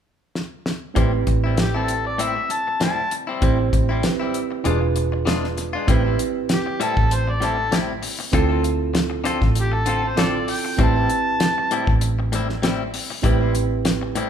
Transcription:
0.35 snare
0.66 snare
0.94 A1 A2 G3 C4 E4 G4 B4, kick, closed hi-hat
1.13 muted clean electric guitar stroke
1.27 A1, muted clean electric guitar stroke, kick, closed hi-hat
1.44 G3 C4 E4
1.58 G4, muted clean electric guitar stroke, snare, closed hi-hat
1.74 G3 C4 E4 A4
1.88 closed hi-hat
2.05 D5, muted clean electric guitar stroke
2.18 A2 G3 C4 E4 E5, closed hi-hat
2.35 muted clean electric guitar stroke
2.49 A5, muted clean electric guitar stroke, closed hi-hat
2.67 muted clean electric guitar stroke
2.80 A2 G3 C4 E4 A5, snare, closed hi-hat
3.11 muted clean electric guitar stroke, closed hi-hat
3.27 G3 C4 E4
3.41 A1 A2 G3 C4 E4 G4 C5, kick, closed hi-hat
3.59 muted clean electric guitar stroke
3.73 A1, muted clean electric guitar stroke, kick, closed hi-hat
3.89 G3 C4 E4
4.03 C4 E4 G4 B4, muted clean electric guitar stroke, snare, closed hi-hat
4.20 G3 C4 E4
4.34 closed hi-hat
4.51 muted clean electric guitar stroke
4.64 E1 E3 G#3 D4 F4 G#4 B4, closed hi-hat
4.81 muted clean electric guitar stroke
4.96 muted clean electric guitar stroke, closed hi-hat
5.12 muted clean electric guitar stroke
5.25 E3 G#3 D4 F4, snare, closed hi-hat
5.44 snare
5.57 muted clean electric guitar stroke, snare, closed hi-hat
5.73 G#3 D4 F4
5.87 A1 A2 G3 C4 E4 G4 B4, kick, closed hi-hat
6.04 G3 C4 E4
6.19 muted clean electric guitar stroke, closed hi-hat
6.49 G4, muted clean electric guitar stroke, snare, closed hi-hat
6.66 muted clean electric guitar stroke
6.80 A2 G3 C4 E4 A4, closed hi-hat
6.97 A1, muted clean electric guitar stroke, kick
7.11 C5, closed hi-hat
7.28 muted clean electric guitar stroke
7.32 D5
7.40 A2 G3 C4 E4, snare, closed hi-hat
7.46 A4
7.57 muted clean electric guitar stroke
7.71 A2 G3 C4 E4, snare, closed hi-hat
8.02 muted clean electric guitar stroke, open hi-hat
8.19 muted clean electric guitar stroke
8.32 D2 D3 C4 E4 F4 A4, kick, closed hi-hat
8.49 C4 F4 A4
8.63 muted clean electric guitar stroke, closed hi-hat
8.94 muted clean electric guitar stroke, snare, closed hi-hat
9.10 muted clean electric guitar stroke
9.24 D3 C4 F4 A4, snare, closed hi-hat
9.41 A1, muted clean electric guitar stroke, kick, snare
9.55 closed hi-hat
9.61 G4
9.72 A4, muted clean electric guitar stroke
9.86 D3 C4 F4 A4, closed hi-hat
10.04 C5, muted clean electric guitar stroke
10.16 D3 C4 E4 F4 A4, snare, closed hi-hat
10.20 D5
10.48 G5, muted clean electric guitar stroke, open hi-hat
10.65 muted clean electric guitar stroke
10.77 A1 A2 G3 C4 E4 G4 B4, kick, closed hi-hat
10.83 A5
10.96 G3 C4 E4
11.10 muted clean electric guitar stroke, closed hi-hat
11.40 muted clean electric guitar stroke, snare, closed hi-hat
11.58 muted clean electric guitar stroke
11.71 A2 G3 C4 E4, closed hi-hat
11.87 A1, muted clean electric guitar stroke, kick
12.01 closed hi-hat
12.19 muted clean electric guitar stroke
12.32 A2 G3 C4 E4, snare, closed hi-hat
12.49 muted clean electric guitar stroke, snare
12.62 A2 G3 C4 E4, snare, closed hi-hat
12.94 muted clean electric guitar stroke, open hi-hat
13.10 muted clean electric guitar stroke
13.22 A1 A2 G3 C4 E4 G4 B4, kick, closed hi-hat
13.40 G3 C4 E4
13.55 muted clean electric guitar stroke, closed hi-hat
13.85 muted clean electric guitar stroke, snare, closed hi-hat
14.01 muted clean electric guitar stroke
14.15 A2 G3 C4 E4, closed hi-hat

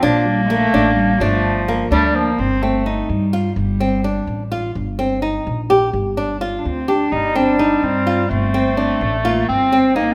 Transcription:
Already playing: F3
0.03 A#1 A#3 D4
0.25 G3
0.48 A3 A#3
0.74 A1 D4
0.96 G3
1.19 G1 F3 A3 D4
1.68 A#3
1.91 D2 G3 A3 D4
2.15 F3 A#3
2.38 G1 C4
2.62 A3 C4
2.86 D#4
3.09 G2 G3
3.33 F4
3.56 G1 G3
3.80 C4
4.04 D4
4.27 A1
4.52 F4
4.75 G1
4.99 C4
5.22 D#4
5.47 A#1
5.70 G4
5.93 G1
6.17 D4
6.41 F4
6.58 D4
6.65 D2 C4
6.88 D4 G4
7.12 G1 G3 D#4
7.35 C4 D4
7.59 D#4
7.83 G2 C4
8.07 F4
8.30 G1 A3 C4
8.54 C4
8.77 D4
9.01 A1 A3
9.25 A#3 F4
9.48 G1 C4
9.72 C4
9.95 A#3 D#4

